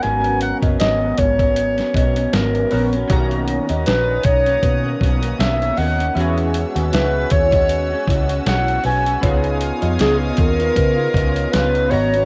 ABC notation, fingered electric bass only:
X:1
M:4/4
L:1/16
Q:"Swing 16ths" 1/4=78
K:C#dor
V:1 name="Fingered electric bass" clef=bass
G,,,3 F,,, G,,,2 G,,,4 B,,,2 G,,,2 A,,,2 | B,,,3 D,, A,,,2 B,,,2 B,,2 B,,,2 B,,,2 D,,2 | E,,3 D,, C,,2 D,,4 C,,2 B,,,2 B,,,2 | C,,3 ^E,, C,,2 D,,2 C,2 C,,2 C,,2 G,,,2 |]